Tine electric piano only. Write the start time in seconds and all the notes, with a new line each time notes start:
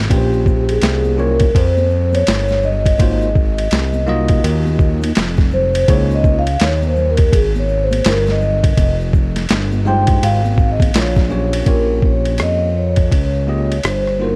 0.09 A#3 C#4 F4 B4 G5
0.18 C5
1.17 A#3 C#4 F4 G4 C#5
2.98 A#3 D#4 F4 F#4 C5
4.07 A#3 D#4 F4 F#4 D#5
5.88 A#3 D#4 E4 G#4 C#5
5.95 F4
9.85 G#3 D#4 F4 G4 C5
11.29 A#3 C#4 F4 G4 C#5
11.66 A#3 C#4 F4 G4 C#5
13.47 A#3 C#4 F4 G4 D#5
14.19 A#3 D#4 F4 F#4 C5